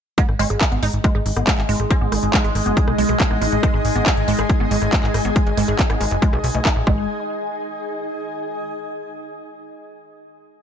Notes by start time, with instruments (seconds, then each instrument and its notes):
0.18 synth arpeggio sound G#3 B3, synth drone G#3, ambient pad D#4, kick, closed hi-hat
0.29 analog synth bass G#1, cross-stick
0.35 ambient pad G#4
0.39 analog synth bass G#1, synth arpeggio sound G#3 C#4, open hi-hat
0.50 analog synth bass G#1, synth arpeggio sound G#4, closed hi-hat
0.59 ambient pad D#5, kick, cross-stick, clap, closed hi-hat
0.72 analog synth bass G#1, synth arpeggio sound B3, closed hi-hat
0.83 analog synth bass G#1, synth arpeggio sound G#3 D#4, open hi-hat
0.93 analog synth bass G#1, closed hi-hat
1.04 synth arpeggio sound G#3, kick, cross-stick, closed hi-hat
1.15 analog synth bass G#1, synth arpeggio sound G#4
1.26 analog synth bass G#1, open hi-hat
1.36 analog synth bass G#1, synth arpeggio sound B3, cross-stick, closed hi-hat
1.47 synth arpeggio sound G#3, kick, clap, closed hi-hat
1.58 analog synth bass G#1, clap
1.69 analog synth bass G#1, synth arpeggio sound G#3, open hi-hat
1.80 analog synth bass G#1, synth arpeggio sound G#4, ambient pad G#5, cross-stick, closed hi-hat
1.91 synth arpeggio sound C#4, kick, closed hi-hat
2.01 analog synth bass G#1, synth arpeggio sound B3
2.12 analog synth bass G#1, synth arpeggio sound G#3, cross-stick, open hi-hat
2.23 analog synth bass G#1, closed hi-hat
2.34 synth arpeggio sound G#3, kick, clap, closed hi-hat
2.44 analog synth bass G#1, synth arpeggio sound G#4, closed hi-hat
2.55 analog synth bass G#1, cross-stick, open hi-hat
2.66 analog synth bass F#1, synth arpeggio sound B3, closed hi-hat
2.77 synth arpeggio sound G#3, kick, closed hi-hat
2.88 analog synth bass B1, cross-stick
2.98 analog synth bass B1, synth arpeggio sound G#3, open hi-hat
3.09 analog synth bass B1, synth arpeggio sound G#4, closed hi-hat
3.20 kick, clap, closed hi-hat
3.31 analog synth bass A1, synth arpeggio sound B3, cross-stick
3.42 analog synth bass A1, synth arpeggio sound G#3, open hi-hat
3.52 analog synth bass A1, closed hi-hat
3.63 synth arpeggio sound G#3, kick, cross-stick, closed hi-hat
3.74 analog synth bass G#1, synth arpeggio sound G#4
3.85 analog synth bass G#1, open hi-hat
3.96 analog synth bass G#1, synth arpeggio sound B3, closed hi-hat
4.06 synth arpeggio sound G#3, kick, cross-stick, clap, closed hi-hat
4.17 analog synth bass G#1, closed hi-hat
4.28 analog synth bass G#1, synth arpeggio sound G#3, open hi-hat
4.39 analog synth bass G#1, synth arpeggio sound G#4, cross-stick, closed hi-hat
4.49 kick, closed hi-hat
4.60 analog synth bass G#1, synth arpeggio sound B3
4.71 analog synth bass G#1, synth arpeggio sound G#3, open hi-hat
4.82 analog synth bass G#1, cross-stick, closed hi-hat
4.93 synth arpeggio sound G#3, kick, clap, closed hi-hat
5.03 analog synth bass G#1, synth arpeggio sound G#4, clap
5.14 analog synth bass G#1, cross-stick, open hi-hat
5.25 analog synth bass G#1, synth arpeggio sound B3, closed hi-hat
5.36 synth arpeggio sound G#3, kick, closed hi-hat
5.47 analog synth bass G#1, closed hi-hat
5.57 analog synth bass G#1, synth arpeggio sound G#3, cross-stick, open hi-hat
5.68 analog synth bass G#1, synth arpeggio sound G#4
5.79 kick, clap, closed hi-hat
5.90 analog synth bass G#1, synth arpeggio sound B3, cross-stick, closed hi-hat
6.01 analog synth bass G#1, synth arpeggio sound G#3, open hi-hat
6.11 analog synth bass F#1, closed hi-hat
6.22 synth arpeggio sound G#3, kick, closed hi-hat
6.33 analog synth bass B1, synth arpeggio sound G#4, cross-stick
6.44 analog synth bass B1, open hi-hat
6.55 analog synth bass B1, synth arpeggio sound A3, closed hi-hat
6.65 synth arpeggio sound D#4, kick, cross-stick, clap, closed hi-hat
6.76 analog synth bass A1
6.87 analog synth bass G#1, synth arpeggio sound G#3, ambient pad D#4, kick
6.93 ambient pad G#4
7.21 ambient pad D#5
7.28 ambient pad G#5